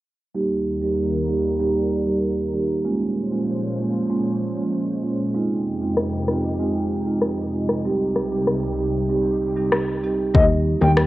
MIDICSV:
0, 0, Header, 1, 6, 480
1, 0, Start_track
1, 0, Tempo, 625000
1, 266, Time_signature, 4, 2, 24, 8
1, 8499, End_track
2, 0, Start_track
2, 0, Title_t, "Soft synth lead"
2, 0, Program_c, 0, 80
2, 7946, Note_on_c, 0, 75, 104
2, 8027, Note_off_c, 0, 75, 0
2, 8304, Note_on_c, 0, 79, 82
2, 8386, Note_off_c, 0, 79, 0
2, 8499, End_track
3, 0, Start_track
3, 0, Title_t, "Marimba"
3, 0, Program_c, 1, 12
3, 265, Note_on_c, 1, 55, 87
3, 266, Note_on_c, 1, 58, 80
3, 268, Note_on_c, 1, 63, 80
3, 269, Note_on_c, 1, 67, 92
3, 596, Note_off_c, 1, 55, 0
3, 597, Note_off_c, 1, 58, 0
3, 598, Note_off_c, 1, 63, 0
3, 598, Note_off_c, 1, 67, 0
3, 625, Note_on_c, 1, 55, 73
3, 626, Note_on_c, 1, 58, 65
3, 627, Note_on_c, 1, 63, 66
3, 629, Note_on_c, 1, 67, 79
3, 767, Note_off_c, 1, 55, 0
3, 767, Note_off_c, 1, 58, 0
3, 768, Note_off_c, 1, 63, 0
3, 769, Note_off_c, 1, 67, 0
3, 984, Note_on_c, 1, 55, 72
3, 985, Note_on_c, 1, 58, 68
3, 987, Note_on_c, 1, 63, 62
3, 989, Note_on_c, 1, 67, 80
3, 1126, Note_off_c, 1, 55, 0
3, 1127, Note_off_c, 1, 58, 0
3, 1127, Note_off_c, 1, 63, 0
3, 1128, Note_off_c, 1, 67, 0
3, 1224, Note_on_c, 1, 55, 93
3, 1226, Note_on_c, 1, 58, 78
3, 1227, Note_on_c, 1, 63, 81
3, 1229, Note_on_c, 1, 67, 94
3, 1366, Note_off_c, 1, 55, 0
3, 1367, Note_off_c, 1, 58, 0
3, 1368, Note_off_c, 1, 63, 0
3, 1368, Note_off_c, 1, 67, 0
3, 1583, Note_on_c, 1, 55, 76
3, 1584, Note_on_c, 1, 58, 65
3, 1586, Note_on_c, 1, 63, 66
3, 1588, Note_on_c, 1, 67, 80
3, 1726, Note_off_c, 1, 55, 0
3, 1726, Note_off_c, 1, 58, 0
3, 1727, Note_off_c, 1, 63, 0
3, 1728, Note_off_c, 1, 67, 0
3, 1944, Note_on_c, 1, 55, 69
3, 1946, Note_on_c, 1, 58, 63
3, 1948, Note_on_c, 1, 63, 62
3, 1949, Note_on_c, 1, 67, 77
3, 2086, Note_off_c, 1, 55, 0
3, 2087, Note_off_c, 1, 58, 0
3, 2088, Note_off_c, 1, 63, 0
3, 2089, Note_off_c, 1, 67, 0
3, 2184, Note_on_c, 1, 56, 88
3, 2185, Note_on_c, 1, 58, 82
3, 2188, Note_on_c, 1, 61, 78
3, 2189, Note_on_c, 1, 65, 95
3, 2516, Note_off_c, 1, 56, 0
3, 2517, Note_off_c, 1, 58, 0
3, 2518, Note_off_c, 1, 61, 0
3, 2518, Note_off_c, 1, 65, 0
3, 2544, Note_on_c, 1, 56, 70
3, 2545, Note_on_c, 1, 58, 65
3, 2547, Note_on_c, 1, 61, 66
3, 2548, Note_on_c, 1, 65, 80
3, 2686, Note_off_c, 1, 56, 0
3, 2687, Note_off_c, 1, 58, 0
3, 2687, Note_off_c, 1, 61, 0
3, 2688, Note_off_c, 1, 65, 0
3, 2904, Note_on_c, 1, 56, 73
3, 2906, Note_on_c, 1, 58, 68
3, 2907, Note_on_c, 1, 61, 64
3, 2909, Note_on_c, 1, 65, 81
3, 3046, Note_off_c, 1, 56, 0
3, 3047, Note_off_c, 1, 58, 0
3, 3048, Note_off_c, 1, 61, 0
3, 3049, Note_off_c, 1, 65, 0
3, 3144, Note_on_c, 1, 56, 90
3, 3146, Note_on_c, 1, 58, 82
3, 3147, Note_on_c, 1, 61, 82
3, 3149, Note_on_c, 1, 65, 102
3, 3286, Note_off_c, 1, 56, 0
3, 3287, Note_off_c, 1, 58, 0
3, 3288, Note_off_c, 1, 61, 0
3, 3289, Note_off_c, 1, 65, 0
3, 3504, Note_on_c, 1, 56, 74
3, 3505, Note_on_c, 1, 58, 68
3, 3506, Note_on_c, 1, 61, 67
3, 3508, Note_on_c, 1, 65, 82
3, 3646, Note_off_c, 1, 56, 0
3, 3646, Note_off_c, 1, 58, 0
3, 3647, Note_off_c, 1, 61, 0
3, 3648, Note_off_c, 1, 65, 0
3, 3863, Note_on_c, 1, 56, 70
3, 3864, Note_on_c, 1, 58, 63
3, 3866, Note_on_c, 1, 61, 63
3, 3867, Note_on_c, 1, 65, 77
3, 4006, Note_off_c, 1, 56, 0
3, 4006, Note_off_c, 1, 58, 0
3, 4007, Note_off_c, 1, 61, 0
3, 4008, Note_off_c, 1, 65, 0
3, 4104, Note_on_c, 1, 56, 88
3, 4105, Note_on_c, 1, 60, 78
3, 4107, Note_on_c, 1, 63, 84
3, 4109, Note_on_c, 1, 65, 96
3, 4436, Note_off_c, 1, 56, 0
3, 4436, Note_off_c, 1, 60, 0
3, 4437, Note_off_c, 1, 63, 0
3, 4438, Note_off_c, 1, 65, 0
3, 4466, Note_on_c, 1, 56, 73
3, 4467, Note_on_c, 1, 60, 68
3, 4469, Note_on_c, 1, 63, 67
3, 4470, Note_on_c, 1, 65, 80
3, 4607, Note_off_c, 1, 56, 0
3, 4608, Note_off_c, 1, 60, 0
3, 4609, Note_off_c, 1, 63, 0
3, 4609, Note_off_c, 1, 65, 0
3, 4824, Note_on_c, 1, 56, 70
3, 4826, Note_on_c, 1, 60, 67
3, 4828, Note_on_c, 1, 63, 67
3, 4829, Note_on_c, 1, 65, 84
3, 4966, Note_off_c, 1, 56, 0
3, 4967, Note_off_c, 1, 60, 0
3, 4968, Note_off_c, 1, 63, 0
3, 4968, Note_off_c, 1, 65, 0
3, 5064, Note_on_c, 1, 56, 90
3, 5065, Note_on_c, 1, 60, 83
3, 5067, Note_on_c, 1, 63, 83
3, 5069, Note_on_c, 1, 65, 97
3, 5206, Note_off_c, 1, 56, 0
3, 5207, Note_off_c, 1, 60, 0
3, 5208, Note_off_c, 1, 63, 0
3, 5209, Note_off_c, 1, 65, 0
3, 5424, Note_on_c, 1, 56, 73
3, 5426, Note_on_c, 1, 60, 67
3, 5427, Note_on_c, 1, 63, 69
3, 5429, Note_on_c, 1, 65, 84
3, 5566, Note_off_c, 1, 56, 0
3, 5567, Note_off_c, 1, 60, 0
3, 5568, Note_off_c, 1, 63, 0
3, 5569, Note_off_c, 1, 65, 0
3, 5786, Note_on_c, 1, 56, 74
3, 5787, Note_on_c, 1, 60, 64
3, 5789, Note_on_c, 1, 63, 68
3, 5790, Note_on_c, 1, 65, 79
3, 5927, Note_off_c, 1, 56, 0
3, 5928, Note_off_c, 1, 60, 0
3, 5929, Note_off_c, 1, 63, 0
3, 5929, Note_off_c, 1, 65, 0
3, 6026, Note_on_c, 1, 55, 88
3, 6027, Note_on_c, 1, 60, 83
3, 6029, Note_on_c, 1, 63, 77
3, 6030, Note_on_c, 1, 67, 95
3, 6357, Note_off_c, 1, 55, 0
3, 6358, Note_off_c, 1, 60, 0
3, 6358, Note_off_c, 1, 63, 0
3, 6359, Note_off_c, 1, 67, 0
3, 6384, Note_on_c, 1, 55, 74
3, 6385, Note_on_c, 1, 60, 64
3, 6387, Note_on_c, 1, 63, 66
3, 6387, Note_on_c, 1, 67, 80
3, 6526, Note_off_c, 1, 55, 0
3, 6527, Note_off_c, 1, 60, 0
3, 6527, Note_off_c, 1, 63, 0
3, 6528, Note_off_c, 1, 67, 0
3, 6744, Note_on_c, 1, 55, 76
3, 6746, Note_on_c, 1, 60, 66
3, 6748, Note_on_c, 1, 63, 67
3, 6749, Note_on_c, 1, 67, 81
3, 6886, Note_off_c, 1, 55, 0
3, 6887, Note_off_c, 1, 60, 0
3, 6888, Note_off_c, 1, 63, 0
3, 6889, Note_off_c, 1, 67, 0
3, 6984, Note_on_c, 1, 55, 90
3, 6985, Note_on_c, 1, 60, 86
3, 6986, Note_on_c, 1, 63, 81
3, 6988, Note_on_c, 1, 67, 103
3, 7126, Note_off_c, 1, 55, 0
3, 7127, Note_off_c, 1, 60, 0
3, 7127, Note_off_c, 1, 63, 0
3, 7128, Note_off_c, 1, 67, 0
3, 7344, Note_on_c, 1, 55, 74
3, 7346, Note_on_c, 1, 60, 67
3, 7347, Note_on_c, 1, 63, 70
3, 7348, Note_on_c, 1, 67, 79
3, 7486, Note_off_c, 1, 55, 0
3, 7487, Note_off_c, 1, 60, 0
3, 7488, Note_off_c, 1, 63, 0
3, 7488, Note_off_c, 1, 67, 0
3, 7704, Note_on_c, 1, 55, 69
3, 7705, Note_on_c, 1, 60, 65
3, 7707, Note_on_c, 1, 63, 65
3, 7709, Note_on_c, 1, 67, 77
3, 7846, Note_off_c, 1, 55, 0
3, 7847, Note_off_c, 1, 60, 0
3, 7848, Note_off_c, 1, 63, 0
3, 7849, Note_off_c, 1, 67, 0
3, 7943, Note_on_c, 1, 55, 87
3, 7944, Note_on_c, 1, 58, 84
3, 7946, Note_on_c, 1, 63, 80
3, 7948, Note_on_c, 1, 67, 97
3, 8275, Note_off_c, 1, 55, 0
3, 8276, Note_off_c, 1, 58, 0
3, 8277, Note_off_c, 1, 63, 0
3, 8278, Note_off_c, 1, 67, 0
3, 8303, Note_on_c, 1, 55, 71
3, 8305, Note_on_c, 1, 58, 66
3, 8307, Note_on_c, 1, 63, 69
3, 8308, Note_on_c, 1, 67, 82
3, 8446, Note_off_c, 1, 55, 0
3, 8447, Note_off_c, 1, 58, 0
3, 8448, Note_off_c, 1, 63, 0
3, 8448, Note_off_c, 1, 67, 0
3, 8499, End_track
4, 0, Start_track
4, 0, Title_t, "Analog synth pad"
4, 0, Program_c, 2, 89
4, 264, Note_on_c, 2, 39, 77
4, 264, Note_on_c, 2, 51, 71
4, 264, Note_on_c, 2, 55, 70
4, 265, Note_on_c, 2, 70, 87
4, 266, Note_on_c, 2, 58, 69
4, 2166, Note_off_c, 2, 39, 0
4, 2166, Note_off_c, 2, 51, 0
4, 2166, Note_off_c, 2, 55, 0
4, 2166, Note_off_c, 2, 58, 0
4, 2166, Note_off_c, 2, 70, 0
4, 2185, Note_on_c, 2, 61, 68
4, 2186, Note_on_c, 2, 46, 79
4, 2186, Note_on_c, 2, 53, 74
4, 2186, Note_on_c, 2, 56, 71
4, 2186, Note_on_c, 2, 72, 86
4, 4086, Note_off_c, 2, 61, 0
4, 4087, Note_off_c, 2, 46, 0
4, 4087, Note_off_c, 2, 53, 0
4, 4087, Note_off_c, 2, 72, 0
4, 4104, Note_on_c, 2, 41, 79
4, 4105, Note_on_c, 2, 48, 74
4, 4105, Note_on_c, 2, 63, 73
4, 4105, Note_on_c, 2, 67, 89
4, 5995, Note_off_c, 2, 56, 0
4, 6006, Note_off_c, 2, 41, 0
4, 6006, Note_off_c, 2, 48, 0
4, 6006, Note_off_c, 2, 67, 0
4, 6024, Note_on_c, 2, 67, 86
4, 6025, Note_on_c, 2, 36, 80
4, 6026, Note_on_c, 2, 48, 74
4, 6026, Note_on_c, 2, 55, 75
4, 7914, Note_off_c, 2, 63, 0
4, 7926, Note_off_c, 2, 36, 0
4, 7926, Note_off_c, 2, 55, 0
4, 7926, Note_off_c, 2, 67, 0
4, 7927, Note_off_c, 2, 48, 0
4, 8499, End_track
5, 0, Start_track
5, 0, Title_t, "Analog synth bass"
5, 0, Program_c, 3, 38
5, 7945, Note_on_c, 3, 39, 110
5, 8264, Note_off_c, 3, 39, 0
5, 8306, Note_on_c, 3, 39, 106
5, 8499, Note_off_c, 3, 39, 0
5, 8499, End_track
6, 0, Start_track
6, 0, Title_t, "Drums"
6, 4585, Note_on_c, 9, 37, 101
6, 4662, Note_off_c, 9, 37, 0
6, 4824, Note_on_c, 9, 37, 93
6, 4901, Note_off_c, 9, 37, 0
6, 5544, Note_on_c, 9, 37, 92
6, 5621, Note_off_c, 9, 37, 0
6, 5906, Note_on_c, 9, 37, 90
6, 5983, Note_off_c, 9, 37, 0
6, 6264, Note_on_c, 9, 37, 91
6, 6341, Note_off_c, 9, 37, 0
6, 6505, Note_on_c, 9, 37, 101
6, 6582, Note_off_c, 9, 37, 0
6, 7464, Note_on_c, 9, 37, 96
6, 7541, Note_off_c, 9, 37, 0
6, 7945, Note_on_c, 9, 36, 108
6, 8022, Note_off_c, 9, 36, 0
6, 8425, Note_on_c, 9, 37, 105
6, 8499, Note_off_c, 9, 37, 0
6, 8499, End_track
0, 0, End_of_file